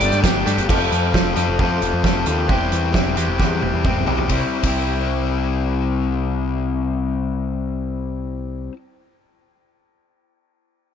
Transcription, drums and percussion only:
0.00 closed hi-hat
0.12 closed hi-hat
0.24 kick, snare, closed hi-hat, tambourine
0.47 closed hi-hat
0.58 closed hi-hat
0.69 kick, crash
0.92 closed hi-hat
1.14 kick, snare
1.36 closed hi-hat
1.59 kick
1.82 closed hi-hat
2.04 kick, snare
2.26 closed hi-hat
2.49 kick
2.72 closed hi-hat
2.94 kick, snare
3.17 closed hi-hat
3.40 kick, snare
3.62 high tom
3.85 kick, mid tom
3.96 mid tom
4.07 floor tom
4.18 floor tom
4.29 kick, ride
4.63 kick, ride

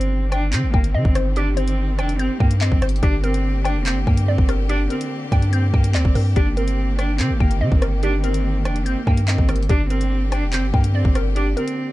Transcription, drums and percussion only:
0.01 closed hi-hat
0.32 cross-stick, closed hi-hat
0.53 clap, closed hi-hat
0.74 kick
0.84 closed hi-hat
1.05 kick
1.15 cross-stick, closed hi-hat
1.36 closed hi-hat
1.57 closed hi-hat
1.68 closed hi-hat
1.99 cross-stick, closed hi-hat
2.09 closed hi-hat
2.19 closed hi-hat
2.40 kick
2.51 closed hi-hat
2.61 clap
2.72 kick
2.82 cross-stick, closed hi-hat, open hi-hat
2.89 closed hi-hat
2.96 closed hi-hat
3.03 kick, closed hi-hat
3.24 closed hi-hat
3.34 closed hi-hat
3.65 cross-stick, closed hi-hat
3.86 clap, closed hi-hat
4.07 kick
4.17 closed hi-hat
4.38 kick
4.49 cross-stick, closed hi-hat
4.69 closed hi-hat
4.90 closed hi-hat
5.01 closed hi-hat
5.32 kick, closed hi-hat
5.42 closed hi-hat
5.53 closed hi-hat
5.74 kick
5.84 closed hi-hat
5.95 clap
6.05 kick
6.15 open hi-hat
6.36 kick, closed hi-hat
6.57 closed hi-hat
6.68 closed hi-hat
6.99 cross-stick, closed hi-hat
7.19 clap, closed hi-hat
7.40 kick
7.51 closed hi-hat
7.72 kick
7.82 cross-stick, closed hi-hat
8.03 closed hi-hat
8.24 closed hi-hat
8.34 closed hi-hat
8.65 cross-stick, closed hi-hat
8.76 closed hi-hat
8.86 closed hi-hat
9.07 kick
9.17 closed hi-hat
9.28 clap
9.38 kick
9.49 cross-stick, closed hi-hat, open hi-hat
9.56 closed hi-hat
9.63 closed hi-hat
9.69 kick, closed hi-hat
9.90 closed hi-hat
10.01 closed hi-hat
10.32 cross-stick, closed hi-hat
10.53 clap, closed hi-hat
10.74 kick
10.84 closed hi-hat
11.05 kick
11.15 cross-stick, closed hi-hat
11.36 closed hi-hat
11.57 closed hi-hat
11.68 closed hi-hat

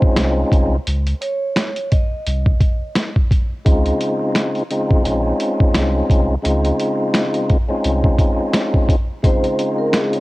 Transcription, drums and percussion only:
0.02 kick
0.16 finger snap, snare, closed hi-hat
0.52 kick, closed hi-hat
0.87 closed hi-hat
1.07 closed hi-hat
1.22 closed hi-hat
1.56 finger snap, snare, closed hi-hat
1.76 closed hi-hat
1.92 kick, closed hi-hat
2.26 closed hi-hat
2.46 kick
2.61 kick, closed hi-hat
2.95 finger snap, snare, closed hi-hat
3.16 kick
3.31 kick, closed hi-hat
3.66 kick, closed hi-hat
3.86 closed hi-hat
4.01 closed hi-hat
4.35 finger snap, snare, closed hi-hat
4.55 closed hi-hat
4.71 closed hi-hat
4.91 kick
5.05 closed hi-hat
5.40 closed hi-hat
5.60 kick
5.75 finger snap, snare, closed hi-hat
6.10 kick, closed hi-hat
6.45 closed hi-hat
6.65 closed hi-hat
6.80 closed hi-hat
7.14 finger snap, snare, closed hi-hat
7.34 closed hi-hat
7.50 kick, closed hi-hat
7.85 closed hi-hat
8.04 kick
8.19 kick, closed hi-hat
8.54 finger snap, snare, closed hi-hat
8.74 kick
8.89 kick, closed hi-hat
9.24 kick, closed hi-hat
9.44 closed hi-hat
9.59 closed hi-hat
9.93 finger snap, snare, closed hi-hat
10.13 closed hi-hat

